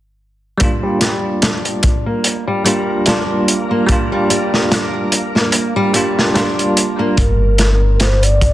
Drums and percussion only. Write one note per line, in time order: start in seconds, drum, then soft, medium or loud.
0.60 kick medium
0.60 closed hi-hat medium
1.01 snare soft
1.01 closed hi-hat medium
1.42 snare medium
1.42 closed hi-hat medium
1.65 closed hi-hat soft
1.83 kick medium
1.83 closed hi-hat medium
2.24 closed hi-hat medium
2.66 closed hi-hat medium
3.06 snare loud
3.06 closed hi-hat medium
3.48 closed hi-hat medium
3.89 kick medium
3.89 closed hi-hat medium
4.30 closed hi-hat medium
4.54 snare soft
4.72 snare medium
4.72 closed hi-hat medium
5.12 closed hi-hat medium
5.36 snare soft
5.52 closed hi-hat medium
5.94 closed hi-hat medium
6.19 snare soft
6.36 snare loud
6.36 closed hi-hat medium
6.59 closed hi-hat soft
6.77 closed hi-hat medium
7.17 kick medium
7.17 closed hi-hat medium
7.58 snare medium
7.58 closed hi-hat medium
8.00 snare medium
8.00 closed hi-hat medium
8.23 closed hi-hat soft
8.41 kick medium
8.41 closed hi-hat medium